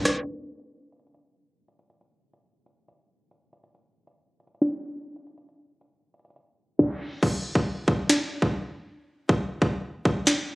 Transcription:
0.05 cross-stick loud
0.05 snare medium
0.05 closed hi-hat medium
0.27 closed hi-hat medium
0.60 closed hi-hat medium
0.92 closed hi-hat medium
0.99 closed hi-hat medium
1.07 closed hi-hat medium
1.14 closed hi-hat medium
1.68 closed hi-hat medium
1.79 closed hi-hat medium
1.90 closed hi-hat medium
2.01 closed hi-hat medium
2.33 closed hi-hat medium
2.66 closed hi-hat medium
2.88 closed hi-hat medium
3.31 closed hi-hat medium
3.53 closed hi-hat medium
3.64 closed hi-hat medium
3.75 closed hi-hat medium
4.07 closed hi-hat medium
4.40 closed hi-hat medium
4.47 closed hi-hat medium
4.55 closed hi-hat medium
4.62 snare loud
5.16 closed hi-hat medium
5.27 closed hi-hat medium
5.38 closed hi-hat medium
5.49 closed hi-hat medium
5.81 closed hi-hat medium
6.14 closed hi-hat soft
6.19 closed hi-hat medium
6.25 closed hi-hat medium
6.30 closed hi-hat medium
6.36 closed hi-hat medium
6.79 kick loud
6.79 snare medium
7.23 kick loud
7.23 crash medium
7.55 kick loud
7.88 kick loud
8.10 snare loud
8.42 kick loud
9.29 kick loud
9.62 kick loud
10.05 kick medium
10.27 snare loud

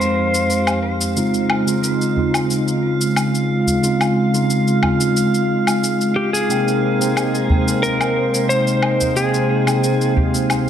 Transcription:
0.00 1.19 F2 medium
0.00 1.13 F3 medium
0.00 1.13 G#3 medium
0.00 1.16 G#3 medium
0.00 1.13 C4 medium
0.00 1.17 C4 medium
0.00 1.17 D#4 medium
0.00 1.13 G4 medium
0.00 1.19 G4 medium
0.00 0.79 C5 medium
0.00 10.70 F5 medium
0.00 shaker soft
0.34 shaker medium
0.50 shaker soft
0.67 low woodblock medium
0.67 shaker soft
1.01 shaker medium
1.16 1.63 C#3 medium
1.16 6.46 C#3 medium
1.16 1.63 G#3 medium
1.16 10.70 G#3 medium
1.16 1.63 C4 medium
1.16 1.63 D#4 medium
1.16 3.81 D#4 medium
1.16 1.64 F4 medium
1.16 6.47 F4 medium
1.16 shaker medium
1.34 shaker soft
1.50 low woodblock medium
1.67 2.12 C#3 medium
1.67 2.13 G#3 medium
1.67 2.13 C4 medium
1.67 2.13 D#4 medium
1.67 2.13 F4 medium
1.67 shaker medium
1.84 shaker soft
2.01 shaker soft
2.15 3.79 C#3 medium
2.15 3.79 G#3 medium
2.15 3.80 C4 medium
2.15 3.80 D#4 medium
2.15 3.81 F4 medium
2.15 udu medium
2.34 low woodblock medium
2.34 shaker medium
2.50 shaker soft
2.68 shaker soft
3.01 shaker medium
3.16 low woodblock medium
3.16 shaker medium
3.35 shaker soft
3.67 udu medium
3.67 shaker medium
3.82 4.29 C#3 medium
3.82 4.30 G#3 medium
3.82 4.30 C4 medium
3.82 4.30 D#4 medium
3.82 4.30 F4 medium
3.82 shaker soft
4.01 low woodblock medium
4.01 shaker soft
4.33 4.79 C#3 medium
4.33 4.79 G#3 medium
4.33 4.79 C4 medium
4.33 4.80 D#4 medium
4.33 4.80 F4 medium
4.33 shaker medium
4.50 shaker soft
4.68 shaker soft
4.81 6.45 C#3 medium
4.81 6.46 G#3 medium
4.81 6.46 C4 medium
4.81 6.46 D#4 medium
4.81 6.47 F4 medium
4.81 udu medium
4.81 low woodblock medium
5.01 shaker medium
5.17 shaker soft
5.34 shaker soft
5.67 low woodblock medium
5.67 shaker medium
5.84 shaker medium
6.01 shaker soft
6.16 6.33 G4 medium
6.33 7.82 G#4 medium
6.33 shaker medium
6.49 6.96 C3 medium
6.49 10.70 C3 medium
6.49 6.96 A#3 medium
6.49 6.97 C4 medium
6.49 10.70 D#4 medium
6.49 6.97 D#4 medium
6.49 9.13 A#4 medium
6.49 10.70 C5 medium
6.49 6.97 G5 medium
6.49 shaker soft
6.68 shaker soft
7.00 7.46 C3 medium
7.00 7.46 A#3 medium
7.00 7.46 C4 medium
7.00 7.46 D#4 medium
7.00 7.47 G5 medium
7.00 shaker medium
7.17 low woodblock medium
7.17 shaker medium
7.35 shaker soft
7.47 9.11 C3 medium
7.47 9.12 A#3 medium
7.47 9.13 C4 medium
7.47 9.13 D#4 medium
7.47 udu medium
7.52 9.14 G5 medium
7.68 shaker medium
7.83 8.46 A#4 medium
7.83 shaker soft
8.01 low woodblock medium
8.01 shaker soft
8.34 shaker medium
8.49 9.18 C5 medium
8.49 shaker soft
8.67 shaker soft
8.83 low woodblock medium
9.01 udu medium
9.01 shaker medium
9.15 9.62 C3 medium
9.15 9.63 A#3 medium
9.15 9.63 C4 medium
9.15 9.63 D#4 medium
9.15 10.13 G#4 medium
9.15 9.63 G5 medium
9.15 shaker soft
9.34 shaker soft
9.66 10.12 C3 medium
9.66 10.12 A#3 medium
9.66 10.13 C4 medium
9.66 10.13 D#4 medium
9.66 10.13 G5 medium
9.66 low woodblock medium
9.66 shaker medium
9.84 shaker soft
10.01 shaker soft
10.14 10.70 C3 medium
10.14 10.70 A#3 medium
10.14 10.70 C4 medium
10.14 10.70 D#4 medium
10.14 udu medium
10.19 10.70 G4 medium
10.35 shaker medium
10.50 low woodblock medium
10.50 shaker soft

